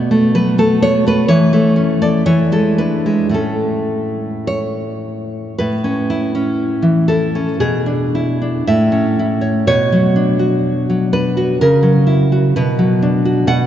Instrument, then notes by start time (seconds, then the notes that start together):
nylon-string guitar
Already playing: B2 B3 D5
0.11 A3
0.35 F#3 B4
0.58 A3 A4
0.82 B3 C#5
1.06 A3 B4
1.28 E3 C#5
1.53 A3
1.76 C#4
2.02 A4 D5
2.26 E3 C#5
2.52 G#3 A4
2.78 D4 B4
3.06 G#3
3.29 A2 A3 C#4
3.34 A4
4.47 C#5
5.58 A2 B4
5.84 C#4
6.10 E4
6.35 C#4
6.82 E3
7.08 E4 A4
7.35 C#4
7.60 B2 G#4
7.86 D4
8.15 E4
8.42 D4
8.67 A2 E5
8.92 C#4
9.19 E4
9.41 C#5
9.67 B2 C#5
9.92 F#3
10.16 D4
10.39 F#4
10.90 F#3
11.13 D4 B4
11.37 F#4
11.61 C#3 A#4
11.83 F#3
12.07 E4
12.32 F#4
12.56 B2 B4
12.79 F#3
13.02 D4
13.25 F#4
13.47 B2 F#5